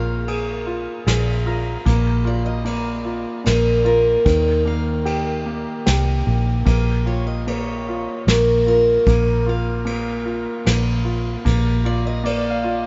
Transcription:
Already playing: A#1 A#3 F4 G#4 F5
0.28 G#4, ride
0.67 F4
1.07 A#1 G#4, snare, ride
1.46 F4 A#4
1.85 A#1 A#3, kick, ride
2.25 F4 D5
2.46 D#5
2.65 A#3 D5, ride
3.05 F4
3.44 A#1 A#3 A#4, snare, ride
3.85 F4 A#4
4.25 D#2 D#3, kick, ride
4.65 A#3 F5
5.05 G4, ride
5.46 A#3
5.86 C2 G4, snare, ride
6.27 A#1 A#3
6.65 A#1 A#3, kick, ride
7.06 F4 C#5
7.27 D#5
7.47 A#3 C#5, ride
7.89 F4
8.27 A#1 A#3 A#4, snare, ride
8.67 F4 A#4
9.07 A#1 A#3, kick, ride
9.46 F4 F5
9.85 A#3, ride
10.26 F4
10.65 A#1 A#3, snare, ride
11.05 F4
11.45 A#1 A#3, kick, ride
11.85 F4 D5
12.07 D#5
12.24 A#3 D5, ride
12.50 F5
12.64 F4

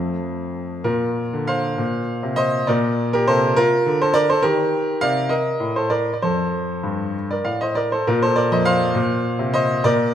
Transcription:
Already playing: F2 F3 A3 C4
0.84 A#2 F4 A#4
1.33 D3
1.47 C5 F5
1.78 A#2
2.23 C3
2.36 C5 D#5
2.67 A#2 A#4 D5
3.13 G4 A#4
3.27 C3 A4 C5
3.56 F4 A#4
3.86 D3
4.02 A4 C5
4.14 A#4 D5
4.30 A4 C5
4.42 D#3 G4 A#4
5.01 C3 D5 F5
5.29 A#4 D#5
5.60 A2
5.76 A4 C5
5.90 A#4 D5
6.13 D5
6.22 F2 A4 C5
6.83 G2
7.31 A#4 D5
7.44 A2 D5 F5
7.61 C5 D#5
7.75 A#4 D5
7.92 A4 C5
8.07 A#2 F4 A#4
8.22 A4 C5
8.36 A#4 D5
8.52 F2 C5 D#5
8.65 C5 F5
8.95 A#2
9.39 C3
9.54 C5 D#5
9.84 A#2 A#4 D5

